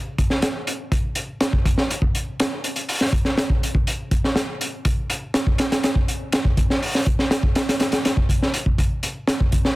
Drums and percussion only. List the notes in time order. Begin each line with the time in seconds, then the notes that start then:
0.18 kick, closed hi-hat
0.30 snare
0.42 snare, closed hi-hat
0.67 closed hi-hat
0.92 kick, closed hi-hat
1.15 closed hi-hat
1.41 snare, closed hi-hat
1.53 kick
1.65 kick, closed hi-hat
1.78 snare
1.91 closed hi-hat
2.02 kick
2.15 closed hi-hat
2.40 snare, closed hi-hat
2.64 closed hi-hat
2.76 closed hi-hat
2.89 open hi-hat
3.01 snare
3.13 kick, closed hi-hat
3.25 snare
3.38 snare, closed hi-hat
3.50 kick
3.63 closed hi-hat
3.75 kick
3.87 closed hi-hat
4.11 kick, closed hi-hat
4.24 snare
4.36 snare, closed hi-hat
4.61 closed hi-hat
4.85 kick, closed hi-hat
5.10 closed hi-hat
5.34 snare, closed hi-hat
5.47 kick
5.58 snare, closed hi-hat
5.72 snare, closed hi-hat
5.83 snare, closed hi-hat
5.96 kick
6.08 closed hi-hat
6.32 snare, closed hi-hat
6.45 kick
6.57 kick, closed hi-hat
6.70 snare
6.82 open hi-hat
6.95 snare
7.07 kick, closed hi-hat
7.19 snare
7.31 snare, closed hi-hat
7.43 kick
7.55 snare, closed hi-hat
7.69 snare, closed hi-hat
7.80 snare, closed hi-hat
7.92 snare, closed hi-hat
8.05 snare, closed hi-hat
8.17 kick
8.29 kick, closed hi-hat
8.42 snare
8.54 closed hi-hat
8.66 kick
8.78 kick, closed hi-hat
9.03 closed hi-hat
9.27 snare, closed hi-hat
9.40 kick
9.52 kick, closed hi-hat
9.65 snare